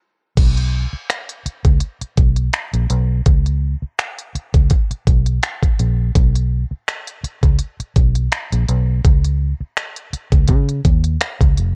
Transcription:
0.37 0.84 B1 loud
0.37 kick loud
0.37 closed hi-hat medium
0.37 crash medium
0.57 closed hi-hat soft
0.93 muted fingered electric bass stroke soft
1.10 finger snap loud
1.10 closed hi-hat medium
1.29 closed hi-hat soft
1.46 muted fingered electric bass stroke soft
1.46 closed hi-hat medium
1.65 1.79 C#2 medium
1.65 kick medium
1.65 closed hi-hat soft
1.80 closed hi-hat medium
2.01 muted fingered electric bass stroke soft
2.01 closed hi-hat soft
2.17 2.48 B1 medium
2.17 kick medium
2.17 closed hi-hat medium
2.36 closed hi-hat soft
2.53 finger snap loud
2.53 closed hi-hat medium
2.74 2.88 A#1 medium
2.74 closed hi-hat soft
2.90 3.21 B1 medium
2.90 closed hi-hat medium
3.26 3.74 C#2 medium
3.26 kick loud
3.26 closed hi-hat medium
3.46 closed hi-hat soft
3.82 muted fingered electric bass stroke soft
3.99 finger snap loud
3.99 closed hi-hat medium
4.19 closed hi-hat soft
4.35 muted fingered electric bass stroke soft
4.35 closed hi-hat medium
4.54 4.68 C#2 medium
4.54 kick medium
4.54 closed hi-hat soft
4.70 kick medium
4.70 closed hi-hat medium
4.91 muted fingered electric bass stroke soft
4.91 closed hi-hat soft
5.07 5.38 B1 medium
5.07 kick medium
5.07 closed hi-hat medium
5.26 closed hi-hat soft
5.43 finger snap loud
5.43 closed hi-hat medium
5.62 kick medium
5.62 closed hi-hat soft
5.79 6.10 A#1 medium
5.79 closed hi-hat medium
6.15 6.63 B1 loud
6.15 kick loud
6.15 closed hi-hat medium
6.35 closed hi-hat soft
6.71 muted fingered electric bass stroke soft
6.88 finger snap loud
6.88 closed hi-hat medium
7.07 closed hi-hat soft
7.24 muted fingered electric bass stroke soft
7.24 closed hi-hat medium
7.43 7.57 C#2 medium
7.43 kick medium
7.43 closed hi-hat soft
7.59 closed hi-hat medium
7.80 muted fingered electric bass stroke soft
7.80 closed hi-hat soft
7.96 8.27 B1 medium
7.96 kick medium
7.96 closed hi-hat medium
8.15 closed hi-hat soft
8.32 finger snap loud
8.32 closed hi-hat medium
8.52 8.66 A#1 medium
8.52 closed hi-hat soft
8.68 8.99 B1 medium
8.68 closed hi-hat medium
9.04 9.52 C#2 loud
9.04 kick loud
9.04 closed hi-hat medium
9.24 closed hi-hat soft
9.61 muted fingered electric bass stroke soft
9.77 finger snap loud
9.77 closed hi-hat medium
9.97 closed hi-hat soft
10.13 muted fingered electric bass stroke soft
10.13 closed hi-hat medium
10.32 10.51 C#2 medium
10.32 kick medium
10.32 closed hi-hat soft
10.48 10.80 C#3 loud
10.48 kick medium
10.48 closed hi-hat medium
10.69 closed hi-hat soft
10.85 11.16 D#2 medium
10.85 kick medium
10.85 closed hi-hat medium
11.04 closed hi-hat soft
11.21 finger snap loud
11.21 closed hi-hat medium
11.41 11.55 C#2 medium
11.41 kick medium
11.41 closed hi-hat soft
11.57 11.74 F1 medium
11.57 closed hi-hat soft

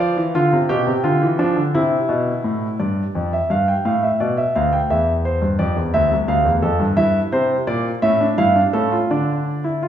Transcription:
0.00 0.15 F3 medium
0.00 0.21 D5 medium
0.00 0.66 F5 medium
0.17 0.34 E3 medium
0.35 0.51 D3 medium
0.35 0.56 F4 medium
0.53 0.69 C3 medium
0.69 0.86 B2 medium
0.69 0.91 G4 medium
0.69 2.76 G5 medium
0.87 1.04 C3 medium
1.04 1.21 D3 medium
1.04 1.25 F4 medium
1.22 1.39 E3 medium
1.39 1.56 F3 medium
1.39 1.61 D4 medium
1.56 1.73 D3 medium
1.74 1.96 C3 medium
1.74 2.77 E4 medium
2.09 2.31 B2 medium
2.44 2.66 A2 medium
2.80 3.01 G2 medium
2.80 3.31 D5 medium
3.15 3.37 F2 medium
3.33 3.50 E5 medium
3.50 3.72 G2 medium
3.50 3.67 F5 medium
3.68 3.85 G5 medium
3.85 4.07 A2 medium
3.85 4.02 F5 medium
4.03 4.20 E5 soft
4.20 4.42 B2 medium
4.20 4.37 D5 medium
4.37 4.54 E5 medium
4.55 4.77 D2 medium
4.55 4.72 F5 medium
4.73 4.89 G5 medium
4.90 5.40 E2 medium
4.90 5.12 E5 medium
5.25 5.46 C5 medium
5.42 5.58 G2 medium
5.59 5.76 F2 medium
5.59 5.80 D5 medium
5.76 5.93 E2 medium
5.94 6.10 D2 medium
5.94 6.15 E5 medium
6.11 6.28 C2 medium
6.28 6.45 D2 medium
6.28 6.50 F5 medium
6.45 6.62 E2 medium
6.62 6.79 F2 medium
6.62 6.84 A4 medium
6.80 6.95 G2 medium
6.97 7.18 G2 medium
6.97 7.99 E4 medium
6.97 7.18 E5 medium
7.32 7.54 C3 medium
7.32 7.54 C5 medium
7.67 7.89 A#2 medium
7.67 7.89 D5 medium
8.02 8.24 A2 medium
8.02 8.20 C#4 medium
8.02 8.25 E5 medium
8.21 8.38 D4 medium
8.38 8.60 G2 medium
8.38 8.56 E4 medium
8.38 8.60 F5 medium
8.56 8.73 D4 medium
8.73 8.96 A2 medium
8.73 8.91 C#4 medium
8.73 8.96 A4 medium
8.92 9.09 F4 medium
9.11 9.88 D3 medium
9.11 9.63 D4 medium
9.11 9.88 D5 medium
9.64 9.81 E4 medium
9.82 9.88 F4 medium

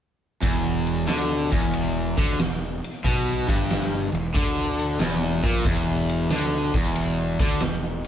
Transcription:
0.42 1.04 E1 medium
0.42 1.07 E2 loud
0.42 kick loud
0.42 ride medium
0.87 ride medium
1.07 1.49 D2 medium
1.07 1.50 D3 loud
1.07 snare loud
1.07 ride loud
1.51 2.13 E1 medium
1.51 2.15 E2 medium
1.51 kick loud
1.51 ride medium
1.73 ride medium
2.17 2.37 D2 medium
2.17 2.38 D3 medium
2.17 kick loud
2.17 ride medium
2.30 snare soft
2.39 2.80 E1 medium
2.39 2.74 E2 medium
2.39 snare loud
2.39 ride medium
2.84 ride medium
3.04 3.45 B1 medium
3.04 3.47 B2 loud
3.04 kick loud
3.04 ride medium
3.47 4.10 G1 medium
3.47 4.11 G2 medium
3.47 kick loud
3.47 ride medium
3.70 snare loud
3.70 ride medium
4.13 4.33 E1 medium
4.13 4.30 E2 medium
4.13 ride medium
4.35 4.96 D2 medium
4.35 4.99 D3 loud
4.35 kick medium
4.35 ride medium
4.79 ride medium
4.99 5.41 E1 medium
4.99 5.42 E2 loud
4.99 snare loud
4.99 ride medium
5.43 5.64 A#1 medium
5.43 5.64 A#2 medium
5.43 kick loud
5.43 ride medium
5.64 6.26 E1 medium
5.64 6.30 E2 loud
5.64 kick loud
5.64 ride medium
6.09 ride medium
6.30 6.71 D2 medium
6.30 6.73 D3 loud
6.30 snare loud
6.30 ride medium
6.74 7.36 E1 medium
6.74 7.39 E2 medium
6.74 kick loud
6.74 ride medium
6.95 ride loud
7.39 7.60 D2 medium
7.39 7.61 D3 loud
7.39 kick loud
7.39 ride medium
7.60 8.02 E1 medium
7.60 7.96 E2 medium
7.60 snare loud
7.60 ride medium
8.04 ride medium

